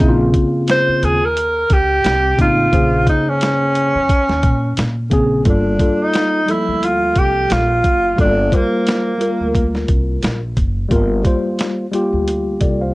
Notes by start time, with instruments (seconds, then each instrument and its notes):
Already playing: tenor saxophone D#4
0.00 upright bass A#1, tine electric piano C#3 A#3 C4 E4, kick, closed hi-hat
0.08 tine electric piano F4
0.34 kick, closed hi-hat
0.68 tenor saxophone C5, snare, closed hi-hat
0.88 muted upright bass stroke
1.03 upright bass D#2, tenor saxophone G#4, closed hi-hat
1.25 tenor saxophone A#4
1.37 closed hi-hat
1.70 upright bass C#2, tenor saxophone G4, kick, closed hi-hat
2.05 upright bass C2, snare, closed hi-hat
2.37 upright bass A1, tine electric piano C#3 A#3 C4 D#4, kick, closed hi-hat
2.42 tenor saxophone F4
2.72 upright bass A#1, tine electric piano C#3 A#3 G#4 C5, kick, closed hi-hat
3.07 tenor saxophone D#4, kick, closed hi-hat
3.29 tenor saxophone C#4
3.41 snare, closed hi-hat
3.75 closed hi-hat
3.95 upright bass F2
4.09 kick, closed hi-hat
4.29 upright bass D#2, snare
4.43 upright bass A#2, kick, closed hi-hat
4.77 upright bass A#2, snare, closed hi-hat
5.10 upright bass A#1, tine electric piano C#3 A#3 C4 G#4, kick, closed hi-hat
5.44 upright bass G1, tine electric piano G3 A#3 F4 A4, kick, closed hi-hat
5.49 tenor saxophone D4
5.78 tine electric piano G3 A#3 F4 A4, kick, closed hi-hat
6.03 tenor saxophone D#4
6.13 snare, closed hi-hat
6.46 tine electric piano F3 G3 A3 A4, closed hi-hat
6.51 tine electric piano A#3, tenor saxophone E4
6.68 upright bass D2
6.83 tenor saxophone F4, closed hi-hat
7.15 upright bass C2, tenor saxophone G4, kick, closed hi-hat
7.50 upright bass A#1, tenor saxophone F4, snare, closed hi-hat
7.84 upright bass F#1, kick, closed hi-hat
8.16 upright bass G1, tine electric piano G3 A#3 F4 A4, kick, closed hi-hat
8.20 tenor saxophone D4
8.50 tine electric piano G3 A#3 F4 C5, kick, closed hi-hat
8.55 tenor saxophone A#3
8.87 snare, closed hi-hat
9.18 tine electric piano G3 A#3 F4 A#4, closed hi-hat
9.41 upright bass D2
9.55 kick, closed hi-hat
9.75 snare
9.88 upright bass C2, kick, closed hi-hat
10.23 upright bass A#1, snare, closed hi-hat
10.57 upright bass F#1, kick, closed hi-hat
10.89 upright bass G1, tine electric piano G3 A#3 F4 A#4, kick, closed hi-hat
11.23 tine electric piano G3 A#3 F4 C5, kick, closed hi-hat
11.59 snare, closed hi-hat
11.92 tine electric piano G3 A#3 F4 G4, closed hi-hat
12.13 upright bass D2
12.28 closed hi-hat
12.61 upright bass C2, tine electric piano A4 D5, kick, closed hi-hat
12.81 tine electric piano C5 F5